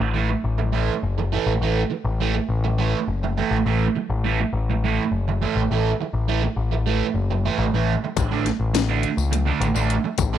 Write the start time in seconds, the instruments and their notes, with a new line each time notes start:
0.00 picked electric bass A1
0.14 distorted electric guitar A2 E3 A3
0.30 muted distorted electric guitar stroke
0.44 picked electric bass A1
0.58 muted distorted electric guitar stroke
0.73 distorted electric guitar A2 E3 A3
1.03 picked electric bass F#1
1.18 muted distorted electric guitar stroke
1.33 distorted electric guitar A2 E3 A3
1.46 picked electric bass A1
1.60 picked electric bass A1, distorted electric guitar A2 E3 A3
1.91 muted distorted electric guitar stroke
2.04 picked electric bass A1
2.21 distorted electric guitar A2 E3 A3
2.35 muted distorted electric guitar stroke
2.49 picked electric bass A1
2.64 muted distorted electric guitar stroke
2.78 distorted electric guitar A2 E3 A3
3.08 picked electric bass F#1
3.23 muted distorted electric guitar stroke
3.37 distorted electric guitar A2 E3 A3
3.51 picked electric bass A1
3.65 picked electric bass A1, distorted electric guitar A2 E3 A3
3.95 muted distorted electric guitar stroke
4.10 picked electric bass A1
4.24 distorted electric guitar A2 E3 A3
4.40 muted distorted electric guitar stroke
4.53 picked electric bass A1
4.70 muted distorted electric guitar stroke
4.84 distorted electric guitar A2 E3 A3
5.11 picked electric bass F#1
5.28 muted distorted electric guitar stroke
5.42 distorted electric guitar A2 E3 A3
5.56 picked electric bass A1
5.70 picked electric bass A1, distorted electric guitar A2 E3 A3
6.01 muted distorted electric guitar stroke
6.13 picked electric bass A1
6.29 distorted electric guitar A2 E3 A3
6.44 muted distorted electric guitar stroke
6.56 picked electric bass A1
6.72 muted distorted electric guitar stroke
6.87 distorted electric guitar A2 E3 A3
7.14 picked electric bass F#1
7.30 muted distorted electric guitar stroke
7.45 distorted electric guitar A2 E3 A3
7.58 picked electric bass A1
7.73 picked electric bass A1, distorted electric guitar A2 E3 A3
8.04 muted distorted electric guitar stroke
8.16 picked electric bass A1, kick, closed hi-hat, tambourine
8.31 distorted electric guitar D3 A3 D4
8.46 muted distorted electric guitar stroke, snare, closed hi-hat, tambourine
8.59 picked electric bass A1
8.74 muted distorted electric guitar stroke, snare, closed hi-hat, tambourine
8.89 distorted electric guitar D3 A3 D4
9.03 closed hi-hat, tambourine
9.17 picked electric bass C#2, tambourine
9.32 muted distorted electric guitar stroke, closed hi-hat, tambourine
9.46 distorted electric guitar D3 A3 D4
9.60 picked electric bass A1, closed hi-hat, tambourine
9.75 picked electric bass A1, distorted electric guitar D3 A3 D4, tambourine
9.90 closed hi-hat
10.04 muted distorted electric guitar stroke
10.18 picked electric bass A1, kick, closed hi-hat, tambourine
10.33 distorted electric guitar D3 A3 D4